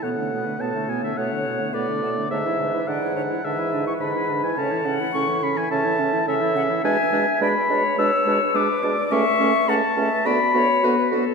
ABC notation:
X:1
M:4/4
L:1/16
Q:1/4=106
K:A
V:1 name="Oboe"
f4 a2 g e f4 d4 | e4 f4 e3 c' b3 g | a3 z c'2 b g a4 e4 | g4 b4 e'4 d'4 |
c'4 a4 b6 z2 |]
V:2 name="Flute"
c2 B2 A4 c4 B2 A2 | c2 B2 d2 c2 B8 | c2 f4 z2 e4 c2 f2 | e4 d2 c6 B2 d2 |
e4 f2 e2 d2 c2 B2 A2 |]
V:3 name="Clarinet"
B, A, B, A, B, A, B, A, B, A, B, A, B, A, B, A, | D E D E D E D E D E D E D E D E | C E C E C E C E C E C E C E C E | D2 D2 D2 D2 D2 D2 D2 D2 |
C2 C2 C2 C2 F2 F2 F2 F2 |]
V:4 name="French horn" clef=bass
B,, D, B,, D, B,, D, B,, D, B,, D, B,, D, B,, D, B,, D, | D, E, D, E, D, E, D, E, D, E, D, E, D, E, D, E, | C, E, C, E, C, E, C, E, C, E, C, E, C, E, C, E, | G,2 G,2 G,2 G,2 G,2 G,2 G,2 G,2 |
A,2 A,2 A,2 A,2 B,2 B,2 B,2 B,2 |]
V:5 name="Bassoon" clef=bass
A,,4 A,,4 A,,4 A,,4 | G,,4 G,,4 G,,4 G,,4 | A,,4 A,,4 A,,4 A,,4 | B,,2 B,,2 B,,2 B,,2 B,,2 B,,2 B,,2 B,,2 |
C,,2 C,,2 C,,2 C,,2 D,,2 D,,2 D,,2 D,,2 |]